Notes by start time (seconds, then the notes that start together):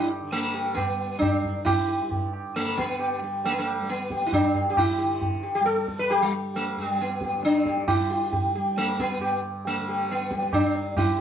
Already playing: G2 D3 G3
0.09 tabla na
0.20 D3
0.32 A3, tabla tin
0.54 G4
0.75 B3, tabla na, tabla ge
0.79 G3
1.19 D4, tabla na, tabla ge
1.41 G3, tabla ge
1.65 E4, tabla na, tabla ge
1.88 G4
2.01 G2
2.11 tabla tin, tabla ge
2.33 tabla na
2.56 A3, tabla te
2.61 D3
2.68 tabla te
2.77 B3, tabla ke
2.89 tabla te
2.99 G4, tabla na
3.21 G3 G4
3.45 A3, tabla tin
3.52 B3
3.59 A3
3.67 tabla na
3.81 G3
3.89 B3, tabla te
4.00 tabla te
4.10 G4, tabla ke
4.22 tabla te
4.27 E4
4.33 D4, tabla na, tabla ge
4.40 G2
4.54 G4, tabla ge
4.70 G4
4.77 E4, tabla na, tabla ge
4.98 D3 G4
5.21 tabla tin, tabla ge
5.43 G4
5.55 G4
5.61 G3
5.66 A4, tabla te
5.76 tabla te
5.88 tabla ke
5.98 B4, tabla te
6.10 G4, tabla na
6.17 G3
6.22 G3
6.54 A3, tabla tin
6.76 G2 G4
6.85 G3
6.98 B3, tabla te
7.09 tabla te
7.21 G4, tabla ke
7.32 tabla te
7.36 D3
7.43 D4, tabla te
7.54 tabla te
7.66 G4, tabla ke
7.77 tabla te
7.88 E4, tabla na, tabla ge
7.96 G3
8.11 G4
8.33 G4, tabla tin, tabla ge
8.55 G3 G4
8.77 A3, tabla te
8.89 tabla te
9.00 B3, tabla ke
9.10 tabla te
9.17 G2 G4, tabla na
9.65 A3, tabla tin
9.77 D3
9.88 G4
10.09 B3, tabla te
10.20 tabla te
10.31 G4, tabla ke
10.35 G3
10.42 tabla te
10.53 D4, tabla na, tabla ge
10.75 tabla te
10.93 G3, tabla na, tabla ge
10.98 E4